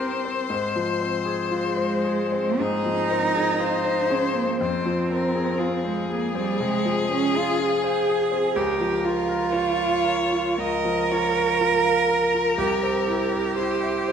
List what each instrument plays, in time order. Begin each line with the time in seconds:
Already playing: grand piano E3 G3 C4 G4 C5, cello C4, violin C5
0.00 grand piano A#4
0.25 grand piano C4
0.50 grand piano G#2
0.76 grand piano F3
1.01 grand piano C4
1.25 grand piano G#4
1.51 cello G#3, grand piano F4
1.77 grand piano C5
2.04 grand piano G#4
2.32 grand piano C4
2.60 grand piano G#2, cello D#4, violin G#4
2.85 grand piano F3
3.10 grand piano C4, violin A#4
3.35 grand piano G#4
3.60 grand piano F4, violin C5
3.85 grand piano C5
4.10 cello C#4, grand piano G#4
4.36 cello A#3, grand piano C4
4.60 grand piano F2, cello C4, violin C5
4.86 grand piano F3
5.10 grand piano C4, violin A#4
5.35 grand piano G#4
5.59 grand piano F4, violin G#4
5.84 cello G#3, grand piano C5
6.10 cello A#3, grand piano G#4
6.35 cello G3, grand piano C4
6.60 grand piano C3, cello G#3
6.85 grand piano F3
7.11 grand piano C4, cello C#4
7.35 cello F4, grand piano G#4
7.60 grand piano F4, cello G#4
7.84 grand piano C5
8.08 grand piano G#4
8.32 grand piano C4
8.55 grand piano C#2, cello G4, violin A#4
8.80 grand piano F3
9.04 grand piano F4, cello F4
9.29 grand piano A#4
9.52 grand piano F4, violin C#5
9.78 grand piano F5
10.05 grand piano A#4
10.32 grand piano F4
10.58 grand piano C#2, cello A#4, violin D#5
10.85 grand piano F3
11.11 grand piano F4, violin C#5
11.37 grand piano A#4
11.61 grand piano F4, violin A#4
11.86 grand piano F5
12.10 grand piano A#4
12.34 grand piano F4
12.58 grand piano C2, cello G4
12.83 grand piano C4
13.08 grand piano E4
13.33 grand piano C5
13.58 grand piano E4, violin C5
13.83 grand piano E5
14.08 grand piano C5